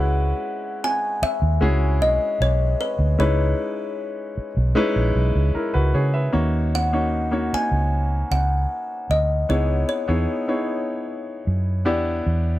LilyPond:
<<
  \new Staff \with { instrumentName = "Kalimba" } { \time 4/4 \key cis \dorian \tempo 4 = 76 fis''4 gis''8 e''4 dis''8 cis''8 b'8 | cis''2 r2 | r8 fis''4 gis''4 fis''4 dis''8 | cis''8 cis''2 r4. | }
  \new Staff \with { instrumentName = "Grand piano" } { \time 4/4 \key cis \dorian << { r1 | r2. <e' ais'>16 <fis' b'>16 <gis' cis''>16 <b' e''>16~ | <b' e''>16 r2. r8. | r1 | } \\ { <gis cis' e' fis' b'>4~ <gis cis' e' fis' b'>16 r8. <gis cis' e' fis' gis'>4.~ <gis cis' e' fis' gis'>16 r16 | <gis cis' dis' e' b'>4.~ <gis cis' dis' e' b'>16 r16 <gis cis' dis' e' b'>4.~ <gis cis' dis' e' b'>16 r16 | <ais cis' dis' fis' cis''>8 r16 <ais cis' dis' fis' cis''>8 <ais cis' dis' fis' cis''>4.~ <ais cis' dis' fis' cis''>16 r4 | <b dis' e' gis' cis''>8 r16 <b dis' e' gis' cis''>8 <b dis' e' gis' cis''>4.~ <b dis' e' gis' cis''>16 <b d' e' g' d''>8. r16 | } >> }
  \new Staff \with { instrumentName = "Fingered electric bass" } { \clef bass \time 4/4 \key cis \dorian cis,8 r4 r16 dis,16 cis,8 b,,16 r16 b,,8 r16 d,16 | cis,8 r4 r16 b,,16 r16 ais,,16 b,,16 cis,16 r16 cis,16 cis8 | dis,4. r16 cis,8. cis,8 r8 d,8 | cis,8 r16 e,16 r4. fis,8 e,8 e,8 | }
>>